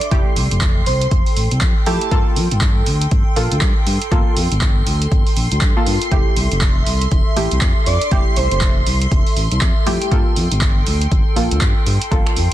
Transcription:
Already playing: A4 E5 C6
0.01 closed hi-hat
0.11 F1 A3 E4 G4 G5, kick, closed hi-hat
0.36 C2, open hi-hat
0.51 F1, closed hi-hat
0.61 kick, clap, closed hi-hat
0.86 C2 C5, open hi-hat
1.01 closed hi-hat
1.11 F1, kick, closed hi-hat
1.26 open hi-hat
1.37 A1, open hi-hat
1.51 C2, closed hi-hat
1.61 F2, kick, clap, closed hi-hat
1.86 F2 A3 E4 G4 A4, open hi-hat
2.01 closed hi-hat
2.11 G1 A#3 F4 A4, kick, closed hi-hat
2.36 F2, open hi-hat
2.51 G1, closed hi-hat
2.61 kick, clap, closed hi-hat
2.86 D2, open hi-hat
3.01 closed hi-hat
3.11 G1, kick, closed hi-hat
3.36 A#1 A#3 F4 A4, open hi-hat
3.52 D2, closed hi-hat
3.61 G2, kick, clap, closed hi-hat
3.87 G2, open hi-hat
4.02 closed hi-hat
4.11 G1 A#3 F4 A4, kick, closed hi-hat
4.37 F2, open hi-hat
4.52 G1, closed hi-hat
4.61 kick, clap, closed hi-hat
4.86 D2, open hi-hat
5.02 closed hi-hat
5.12 G1, kick, closed hi-hat
5.27 open hi-hat
5.36 A#1, open hi-hat
5.52 D2, closed hi-hat
5.61 G2, kick, clap, closed hi-hat
5.77 A#3 F4 A4
5.87 G2, open hi-hat
6.02 closed hi-hat
6.11 F1 A3 E4 G4 E5 C6, kick, closed hi-hat
6.36 C2, open hi-hat
6.52 F1, closed hi-hat
6.61 kick, clap, closed hi-hat
6.87 C2, open hi-hat
7.01 closed hi-hat
7.12 F1, kick, closed hi-hat
7.36 A1 A3 E4 G4, open hi-hat
7.51 C2, closed hi-hat
7.61 F2, kick, clap, closed hi-hat
7.86 F2 D5, open hi-hat
8.01 closed hi-hat
8.11 F1 A3 E4 G4, kick, closed hi-hat
8.36 C2 C5, open hi-hat
8.51 F1 C5, closed hi-hat
8.61 kick, clap, closed hi-hat
8.87 C2, open hi-hat
9.02 closed hi-hat
9.11 F1, kick, closed hi-hat
9.27 open hi-hat
9.37 A1, open hi-hat
9.52 C2, closed hi-hat
9.61 F2, kick, clap, closed hi-hat
9.86 F2 A3 E4 G4, open hi-hat
10.01 G4, closed hi-hat
10.11 G1 A#3 F4 A4 G5, kick, closed hi-hat
10.36 F2, open hi-hat
10.52 G1, closed hi-hat
10.61 kick, clap, closed hi-hat
10.86 D2, open hi-hat
11.01 closed hi-hat
11.12 G1, kick, closed hi-hat
11.36 A#1 A#3 F4 A4, open hi-hat
11.51 D2, closed hi-hat
11.61 G2, kick, clap, closed hi-hat
11.86 G2, open hi-hat
12.02 closed hi-hat
12.11 G1 A#3 F4 A4, kick, closed hi-hat
12.27 finger snap
12.37 F2, open hi-hat

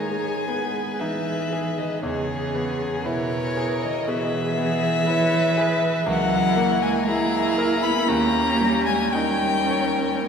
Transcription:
Already playing: D#3 G#3 B3 D#4 G#4 C#5 G#5
0.48 B3 B4
1.00 E3 D#4 E5
1.53 G#4
1.78 D#3 D#5
2.03 E2 C#3 G#4 C#5
2.55 B3
3.05 B2 E4 A#4 B4 C#5
3.57 G#4
3.82 D#3 D#5
4.07 B2 E3 G#4 B4 E5
4.57 B3 G#4
5.07 E4 B4 C#5
5.57 G#4 B4
6.06 C#2 F#3 E4 A#4 F#5
6.56 A#3
6.82 G#3 G#5
7.06 A#3 E4 G#4 A#5
7.58 A#4
7.82 B3 B5
8.07 D#2 A#3 C#4 G4 A#5
8.61 G3
8.86 G#3 G#5
9.12 G3 C#4 D#4 A#4 G5
9.71 C#5

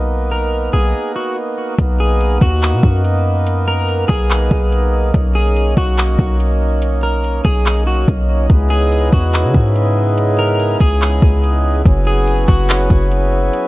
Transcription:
Already playing: B1 A#3 B3 D#4
0.32 A#4
0.73 B1 G#4
1.16 F#4
1.78 B1, kick, closed hi-hat
2.00 G#4
2.21 closed hi-hat
2.41 D#2 F#4, kick, closed hi-hat
2.62 clap, closed hi-hat
2.73 B2
2.83 F#2, kick
3.04 closed hi-hat
3.46 closed hi-hat
3.68 A#4
3.89 closed hi-hat
4.08 B1 G#4, kick, closed hi-hat
4.30 clap, closed hi-hat
4.51 B1, kick
4.72 closed hi-hat
5.14 B1 C#4, kick, closed hi-hat
5.35 G#4
5.56 closed hi-hat
5.77 B1 F#4, kick, closed hi-hat
5.98 clap, closed hi-hat
6.19 B1, kick
6.40 closed hi-hat
6.82 closed hi-hat
7.03 A#4
7.24 closed hi-hat
7.44 B1 G#4, kick, open hi-hat
7.66 clap, closed hi-hat
7.87 F#4
8.08 B1, kick, closed hi-hat
8.50 C#2 C#3 G#3 B3 E4, kick, closed hi-hat
8.70 G#4
8.92 closed hi-hat
9.12 E2 F#4, kick, closed hi-hat
9.34 clap, closed hi-hat
9.44 C#3
9.54 G#2, kick
9.76 closed hi-hat
10.18 closed hi-hat
10.39 A#4
10.60 closed hi-hat
10.80 C#2 G#4, kick, closed hi-hat
11.01 clap, closed hi-hat
11.22 C#2, kick
11.44 closed hi-hat
11.86 F#1 F#3 B3 C#4 G#4, kick, closed hi-hat
12.07 G#4
12.28 closed hi-hat
12.48 F#1 F#4, kick, closed hi-hat
12.69 clap, closed hi-hat
12.90 F#1, kick
13.11 closed hi-hat
13.53 closed hi-hat

